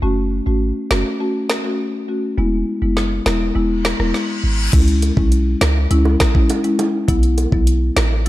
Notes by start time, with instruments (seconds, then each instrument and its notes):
0.02 808-style bass F#1, marimba A3 C#4 F#4
0.46 808-style bass G#1, marimba A3 C#4 F#4
0.90 808-style bass F#1, marimba A3 C#4 F#4, cross-stick, snare
1.20 marimba A3 C#4 F#4
1.50 cross-stick, snare
1.64 marimba A3 C#4 F#4
2.08 marimba A3 C#4 F#4
2.38 808-style bass E1, marimba G#3 B3 E4
2.82 808-style bass F#1, marimba G#3 B3 E4
2.97 snare
3.26 808-style bass E1, marimba G#3 B3 E4, cross-stick, snare
3.55 808-style bass E1, marimba G#3 B3 E4, reverse cymbal
3.85 cross-stick, snare
3.99 808-style bass E1, marimba G#3 B3 E4, cross-stick
4.14 snare
4.44 808-style bass G#1
4.73 808-style bass C#2, marimba G#3 C#4 E4, kick, closed hi-hat, crash
4.88 closed hi-hat
5.02 closed hi-hat, high bongo
5.17 808-style bass B1, marimba G#3 C#4 E4, kick
5.32 closed hi-hat
5.61 808-style bass C#2, cross-stick, snare, closed hi-hat, low bongo
5.90 808-style bass C#2, marimba G#3 C#4 E4, closed hi-hat
6.05 high bongo
6.20 kick, cross-stick, snare, closed hi-hat
6.35 marimba G#3 C#4 E4, kick
6.50 closed hi-hat, high bongo
6.64 marimba G#3 C#4 E4, closed hi-hat
6.79 closed hi-hat, high bongo, low bongo
7.08 808-style bass B1, marimba F#3 B3 E4, kick, closed hi-hat
7.23 closed hi-hat
7.38 closed hi-hat, high bongo
7.52 808-style bass B1, marimba F#3 B3 E4, kick
7.67 closed hi-hat
7.97 808-style bass A1, cross-stick, snare, closed hi-hat, low bongo
8.26 marimba F#3